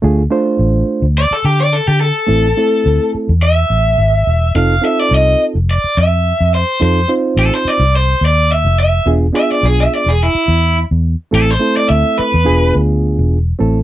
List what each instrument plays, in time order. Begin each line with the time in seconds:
0.02 fingered electric bass D2, reed electric piano A3 D4 F4 G#4
0.30 reed electric piano A3 D4 F4 C5
0.59 fingered electric bass A1
1.02 fingered electric bass D2
1.18 overdriven electric guitar D5
1.31 overdriven electric guitar A4, muted fingered electric bass stroke
1.45 fingered electric bass D3, overdriven electric guitar G4
1.60 overdriven electric guitar D5
1.73 overdriven electric guitar A4
1.87 fingered electric bass D3, overdriven electric guitar G4
2.01 overdriven electric guitar A4
2.27 fingered electric bass A1, reed electric piano A3 C4 E4 A4
2.57 reed electric piano A3 C4 E4 A4
2.86 fingered electric bass D2
3.15 muted fingered electric bass stroke
3.29 fingered electric bass E2
3.43 overdriven electric guitar E5
3.70 fingered electric bass A1
3.98 fingered electric bass G#1
4.27 fingered electric bass E1
4.55 fingered electric bass F1, reed electric piano C4 D#4 F4 A4, overdriven electric guitar F5
4.81 reed electric piano C4 D#4 F4 A4, overdriven electric guitar E5
4.99 overdriven electric guitar D5
5.11 fingered electric bass C2, overdriven electric guitar D#5
5.55 fingered electric bass F1
5.71 overdriven electric guitar D5
5.84 muted fingered electric bass stroke
5.97 fingered electric bass F2, overdriven electric guitar E5
6.40 fingered electric bass F2
6.55 overdriven electric guitar C5
6.80 fingered electric bass F2, reed electric piano C4 D#4 F4 A4, overdriven electric guitar C5
7.08 reed electric piano C4 D#4 F4 C5
7.37 fingered electric bass A1, overdriven electric guitar A4
7.55 overdriven electric guitar C5
7.65 overdriven electric guitar D5, muted fingered electric bass stroke
7.79 fingered electric bass C2
7.96 overdriven electric guitar C5
8.21 fingered electric bass D#2
8.26 overdriven electric guitar D5
8.52 overdriven electric guitar E5
8.65 fingered electric bass F1
8.80 overdriven electric guitar E5
9.06 fingered electric bass E1, reed electric piano B3 D4 F4 G#4
9.32 reed electric piano B3 D4 F4 G#4
9.36 overdriven electric guitar E5
9.52 overdriven electric guitar D5
9.63 fingered electric bass B1, overdriven electric guitar G#4
9.80 overdriven electric guitar E5
9.95 overdriven electric guitar D5
10.06 fingered electric bass E1, overdriven electric guitar G#4
10.23 overdriven electric guitar E4
10.35 muted fingered electric bass stroke
10.48 fingered electric bass E2
10.91 fingered electric bass E2
11.31 fingered electric bass A1, reed electric piano A3 C4 E4 A4, overdriven electric guitar A4
11.51 overdriven electric guitar C5
11.59 reed electric piano A3 C4 E4 A4
11.77 overdriven electric guitar D5
11.89 fingered electric bass D2, overdriven electric guitar E5
12.18 overdriven electric guitar B4, muted fingered electric bass stroke
12.34 fingered electric bass E2
12.45 fingered electric bass E1, reed electric piano B3 D4 F4 G#4
12.75 fingered electric bass D2
13.19 fingered electric bass E1
13.59 fingered electric bass A1, reed electric piano A3 C4 E4 A4